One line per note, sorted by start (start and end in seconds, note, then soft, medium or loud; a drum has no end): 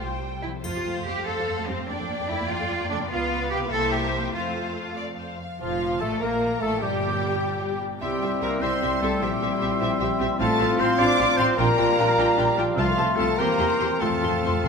0.00 0.43 C2 soft
0.00 0.57 C3 soft
0.00 0.44 G3 soft
0.00 0.49 C4 soft
0.00 0.61 G4 soft
0.00 0.58 C5 soft
0.00 0.43 C5 soft
0.00 0.44 G5 soft
0.43 1.70 F3 soft
0.43 0.51 E4 medium
0.51 1.83 C4 soft
0.55 1.86 A4 soft
0.60 1.88 C5 soft
0.64 0.68 F2 medium
0.64 0.68 A3 soft
0.64 1.05 F4 medium
0.64 1.84 C5 soft
0.64 1.85 F5 soft
0.64 triangle soft
0.75 0.79 F2 soft
0.75 0.79 G3 soft
0.85 0.89 F2 soft
0.85 0.89 A3 soft
0.96 1.00 F2 medium
0.96 1.00 A3 soft
1.06 1.10 F2 soft
1.06 1.10 G3 soft
1.06 1.26 G4 medium
1.16 1.21 F2 soft
1.16 1.20 A3 soft
1.27 1.31 F2 medium
1.27 1.31 A3 soft
1.27 1.67 A4 medium
1.38 1.42 F2 soft
1.38 1.42 G3 soft
1.48 1.52 F2 soft
1.48 1.52 A3 soft
1.58 1.62 F2 medium
1.58 1.62 A3 medium
1.68 1.72 F2 soft
1.68 3.64 F3 soft
1.68 1.73 G3 soft
1.68 1.88 C4 medium
1.75 1.82 F2 soft
1.75 1.83 A3 soft
1.75 3.05 D4 soft
1.79 3.07 G4 soft
1.84 3.09 A#4 soft
1.88 1.93 F2 medium
1.88 1.93 A#3 soft
1.88 2.29 D4 medium
1.88 3.11 D5 medium
1.88 3.10 G5 soft
1.99 2.04 F2 soft
1.99 2.03 A3 soft
2.10 2.13 F2 soft
2.10 2.13 A#3 soft
2.19 2.24 F2 medium
2.19 2.23 A#3 soft
2.29 2.34 F2 soft
2.29 2.34 A3 soft
2.29 2.49 E4 medium
2.39 2.44 F2 soft
2.39 2.43 A#3 soft
2.49 2.54 F2 medium
2.49 2.54 A#3 medium
2.49 2.89 F4 medium
2.60 2.64 F2 soft
2.60 2.64 A3 soft
2.70 2.74 F2 soft
2.70 2.74 A#3 soft
2.79 2.84 F2 medium
2.79 2.83 A#3 medium
2.90 2.94 F2 medium
2.90 3.64 C#3 soft
2.90 2.94 A3 soft
2.90 2.98 D4 medium
2.96 3.04 A#3 medium
2.96 3.66 B3 soft
3.01 3.04 F2 soft
3.01 3.68 F4 soft
3.05 3.70 B4 soft
3.10 3.67 C#2 medium
3.10 3.67 B3 medium
3.10 3.50 F4 medium
3.10 3.68 B4 medium
3.10 3.67 F5 medium
3.50 4.27 C3 medium
3.50 3.58 G4 medium
3.57 4.19 C4 soft
3.62 4.31 E4 soft
3.66 4.33 A#4 soft
3.71 4.33 C2 medium
3.71 4.34 A#3 medium
3.71 3.91 A4 medium
3.71 4.33 C5 medium
3.71 4.34 E5 medium
3.91 4.34 G4 medium
4.16 5.70 F3 soft
4.20 5.56 C4 soft
4.25 5.91 F4 soft
4.29 5.40 A3 soft
4.29 5.60 A4 soft
4.33 5.39 F2 medium
4.33 4.97 F4 medium
4.33 4.93 C5 soft
4.33 5.39 F5 soft
4.97 5.05 D5 medium
5.20 5.40 C5 soft
5.41 5.61 F5 soft
5.60 5.99 F1 medium
5.60 6.81 A#2 soft
5.60 5.98 F3 medium
5.60 5.99 F3 medium
5.60 6.03 F4 medium
5.60 5.99 F4 medium
5.60 6.03 F4 medium
5.60 5.99 F5 medium
5.71 6.71 F3 soft
5.82 6.61 D4 soft
5.92 6.84 F4 soft
6.00 6.22 A1 medium
6.00 6.21 A3 medium
6.00 6.23 A3 medium
6.00 6.22 A3 medium
6.00 6.10 A4 medium
6.00 6.25 A4 medium
6.00 6.21 A4 medium
6.00 6.23 A4 medium
6.00 6.51 A#4 soft
6.00 6.21 A5 medium
6.12 6.41 D5 soft
6.20 6.61 A#1 medium
6.20 6.61 A#3 medium
6.20 6.62 A#3 soft
6.20 6.62 A#3 medium
6.20 6.61 A#3 medium
6.20 6.61 A#4 medium
6.20 6.62 A#4 medium
6.20 6.84 F5 soft
6.20 6.61 A#5 medium
6.32 8.04 A#5 soft
6.42 7.31 D5 soft
6.52 8.04 A#4 soft
6.61 6.81 A1 medium
6.61 6.81 A3 medium
6.61 6.84 A3 medium
6.61 6.81 A3 medium
6.61 6.82 A3 medium
6.61 7.00 D4 soft
6.61 6.81 A4 medium
6.61 6.71 A4 medium
6.61 6.83 A4 medium
6.61 6.81 A5 medium
6.72 6.84 F3 soft
6.79 7.82 G1 medium
6.79 8.04 A#2 medium
6.79 7.79 G3 medium
6.79 7.82 G3 medium
6.79 7.80 G3 medium
6.79 7.82 G3 medium
6.79 7.80 G4 medium
6.79 7.82 G4 medium
6.79 7.80 G4 medium
6.79 7.82 G5 medium
6.92 7.10 A#3 soft
7.02 7.80 D4 soft
7.12 7.91 A#3 soft
7.32 7.61 D5 soft
7.42 7.71 G4 medium
7.52 8.70 G5 soft
7.62 8.04 D5 soft
7.72 8.40 G4 soft
7.81 8.03 D4 soft
7.92 8.04 A#3 soft
8.01 8.09 C2 medium
8.01 9.23 C3 medium
8.01 8.39 G3 medium
8.01 8.58 G3 medium
8.01 8.10 C4 soft
8.01 8.58 C4 medium
8.01 8.58 E4 soft
8.01 8.10 G4 soft
8.01 8.44 G4 medium
8.01 8.10 E5 soft
8.01 8.58 E5 medium
8.01 8.39 G5 medium
8.01 8.58 C6 medium
8.12 9.10 G3 soft
8.21 8.29 C2 medium
8.21 9.00 C4 soft
8.21 8.30 C4 soft
8.21 8.30 G4 soft
8.21 8.30 E5 soft
8.31 9.49 E4 soft
8.41 8.49 C2 medium
8.41 8.61 A#3 medium
8.41 8.50 C4 soft
8.41 8.90 G4 soft
8.41 8.50 G4 soft
8.41 8.63 A#4 medium
8.41 8.50 E5 soft
8.41 8.50 A#5 medium
8.52 8.80 C5 soft
8.61 8.70 C2 medium
8.61 9.21 G3 medium
8.61 9.18 C4 medium
8.61 9.02 C4 medium
8.61 8.70 C4 soft
8.61 9.19 E4 medium
8.61 8.69 G4 medium
8.61 9.02 C5 medium
8.61 9.79 E5 medium
8.61 9.21 E5 medium
8.61 8.70 E5 medium
8.61 9.01 C6 medium
8.61 9.21 C6 medium
8.71 9.89 G5 soft
8.82 8.90 C2 medium
8.82 8.90 C4 soft
8.82 8.90 G4 medium
8.82 9.69 C5 soft
8.82 8.90 E5 soft
8.91 9.59 G4 soft
9.01 9.09 C2 medium
9.01 9.21 A3 medium
9.01 9.39 C4 soft
9.01 9.10 C4 medium
9.01 9.10 G4 soft
9.01 9.25 A4 medium
9.01 9.11 E5 medium
9.01 9.22 A5 medium
9.11 10.42 G3 soft
9.19 9.29 A#1 medium
9.19 10.41 A#2 medium
9.19 10.20 G3 medium
9.19 10.39 G3 medium
9.19 10.37 C4 medium
9.19 9.30 C4 medium
9.19 10.37 E4 medium
9.19 9.30 G4 medium
9.19 10.38 E5 medium
9.19 9.30 E5 medium
9.19 10.18 G5 medium
9.19 10.38 C6 medium
9.24 10.22 G4 medium
9.31 10.29 A#3 soft
9.41 9.49 A#1 medium
9.41 10.18 C4 soft
9.41 9.49 C4 medium
9.41 9.49 G4 medium
9.41 9.50 E5 soft
9.50 10.42 E4 soft
9.60 9.69 A#1 medium
9.60 9.69 C4 soft
9.60 10.08 G4 medium
9.60 9.69 G4 medium
9.60 9.69 E5 medium
9.70 9.98 C5 medium
9.80 9.89 A#1 medium
9.80 9.88 C4 medium
9.80 9.88 G4 medium
9.80 10.42 E5 medium
9.80 9.90 E5 medium
9.90 10.42 G5 medium
10.00 10.08 A#1 medium
10.00 10.08 C4 medium
10.00 10.09 G4 medium
10.00 10.87 C5 medium
10.00 10.09 E5 medium
10.10 10.42 G4 soft
10.19 10.28 A#1 medium
10.19 10.58 C4 medium
10.19 10.28 C4 medium
10.19 10.29 G4 medium
10.19 10.28 E5 medium
10.30 10.42 A#3 medium
10.39 10.48 A1 medium
10.39 11.60 A2 medium
10.39 11.56 F3 medium
10.39 10.77 A3 medium
10.39 11.56 C4 medium
10.39 10.48 C4 medium
10.39 10.47 F4 medium
10.39 11.56 F4 medium
10.39 10.81 A4 medium
10.39 11.56 F5 medium
10.39 10.48 F5 medium
10.39 10.77 A5 medium
10.39 11.56 C6 medium
10.60 10.68 A1 medium
10.60 10.68 C4 medium
10.60 10.68 F4 medium
10.60 10.68 F5 medium
10.69 11.17 F4 medium
10.79 10.87 A1 medium
10.79 11.27 C4 medium
10.79 10.99 C4 medium
10.79 10.87 C4 medium
10.79 10.87 F4 medium
10.79 11.00 C5 medium
10.79 10.87 F5 medium
10.79 10.99 C6 medium
10.88 11.07 C5 medium
10.98 11.07 A1 medium
10.98 11.07 C4 medium
10.98 11.38 D4 medium
10.98 11.07 F4 medium
10.98 11.38 D5 loud
10.98 12.17 F5 medium
10.98 11.07 F5 medium
10.98 11.39 D6 medium
11.08 11.60 C5 medium
11.18 11.27 A1 medium
11.18 11.28 C4 medium
11.18 11.87 F4 medium
11.18 11.28 F4 medium
11.18 11.27 F5 medium
11.28 11.47 C4 medium
11.37 11.47 A1 medium
11.37 11.60 A3 medium
11.37 11.59 C4 medium
11.37 11.47 C4 medium
11.37 11.47 F4 medium
11.37 11.57 C5 loud
11.37 11.46 F5 medium
11.37 11.46 C6 medium
11.48 11.60 C4 medium
11.57 11.67 A#1 medium
11.57 12.79 A#2 medium
11.57 12.75 G3 medium
11.57 12.76 G3 medium
11.57 12.58 A#3 medium
11.57 11.67 D4 medium
11.57 12.75 F4 medium
11.57 11.67 F4 medium
11.57 12.55 A#4 loud
11.57 12.76 F5 medium
11.57 11.66 G5 medium
11.57 12.55 A#5 medium
11.57 12.49 A#5 medium
11.68 12.67 F3 soft
11.78 11.87 A#1 medium
11.78 12.57 D4 medium
11.78 11.86 D4 medium
11.78 11.86 F4 medium
11.78 11.86 G5 medium
11.88 13.07 F4 medium
11.98 12.07 A#1 medium
11.98 12.06 D4 medium
11.98 12.06 F4 medium
11.98 12.46 G4 medium
11.98 12.06 G5 medium
12.08 12.37 D5 medium
12.17 12.27 A#1 medium
12.17 12.25 D4 medium
12.17 12.26 F4 medium
12.17 13.40 F5 medium
12.17 12.27 G5 medium
12.28 12.79 G5 medium
12.37 12.46 A#1 medium
12.37 12.45 D4 medium
12.37 12.45 F4 medium
12.37 12.79 D5 medium
12.37 12.46 G5 medium
12.48 12.79 G4 medium
12.57 12.66 A#1 medium
12.57 12.65 D4 medium
12.57 12.80 D4 medium
12.57 12.65 F4 medium
12.57 12.65 G5 medium
12.68 13.41 F3 medium
12.77 12.86 C2 medium
12.77 13.35 C3 medium
12.77 13.41 C3 medium
12.77 13.15 F3 medium
12.77 13.41 A3 medium
12.77 13.39 A3 medium
12.77 12.85 C4 medium
12.77 13.18 F4 medium
12.77 12.85 F4 medium
12.77 13.38 F4 medium
12.77 13.40 F5 medium
12.77 13.15 F5 medium
12.77 12.86 A5 medium
12.77 13.37 C6 medium
12.88 13.41 A3 medium
12.97 13.06 C2 medium
12.97 13.05 C4 medium
12.97 13.58 C4 medium
12.97 13.05 F4 medium
12.97 13.05 A5 medium
13.08 13.41 F4 medium
13.17 13.26 C2 medium
13.17 13.26 A3 medium
13.17 13.26 C4 medium
13.17 13.26 F4 medium
13.17 13.37 A4 medium
13.17 13.41 A4 medium
13.17 13.26 A5 medium
13.17 13.38 A5 medium
13.29 13.79 C5 medium
13.38 13.47 E2 medium
13.38 14.03 E3 medium
13.38 14.00 A#3 medium
13.38 14.00 C4 medium
13.38 13.47 C4 medium
13.38 14.00 C4 medium
13.38 14.01 G4 medium
13.38 13.47 G4 medium
13.38 14.02 A#4 medium
13.38 14.04 G5 medium
13.38 14.02 A#5 medium
13.38 14.00 C6 medium
13.38 13.47 C6 medium
13.49 14.03 A#3 soft
13.59 13.67 E2 medium
13.59 13.67 C4 medium
13.59 14.11 C4 soft
13.59 13.67 G4 medium
13.59 13.67 C6 medium
13.70 13.90 G4 soft
13.79 13.88 E2 medium
13.79 13.88 C4 soft
13.79 13.88 G4 medium
13.79 14.32 C5 soft
13.79 13.87 C6 medium
13.91 14.03 G4 soft
14.01 14.09 F2 medium
14.01 14.08 F2 soft
14.01 14.68 F3 medium
14.01 14.68 A3 medium
14.01 14.09 C4 medium
14.01 14.68 C4 medium
14.01 14.09 F4 soft
14.01 14.68 F4 medium
14.01 14.68 A4 medium
14.01 14.68 F5 medium
14.01 14.68 A5 medium
14.01 14.09 C6 medium
14.01 14.59 C6 medium
14.09 14.15 F2 soft
14.09 14.68 C4 soft
14.17 14.24 F2 soft
14.21 14.30 F2 medium
14.21 14.31 F2 soft
14.21 14.29 C4 soft
14.21 14.30 F4 medium
14.21 14.43 F4 soft
14.21 14.31 C6 soft
14.32 14.39 F2 soft
14.32 14.68 C5 soft
14.40 14.47 F2 soft
14.40 14.51 F2 medium
14.40 14.51 C4 soft
14.40 14.51 F4 soft
14.40 14.68 F4 soft
14.45 14.54 F2 soft
14.45 14.53 C6 soft
14.54 14.62 F2 soft
14.54 14.68 F5 soft
14.63 14.68 F2 medium
14.63 14.68 C4 soft
14.63 14.68 F4 medium
14.63 14.68 C6 medium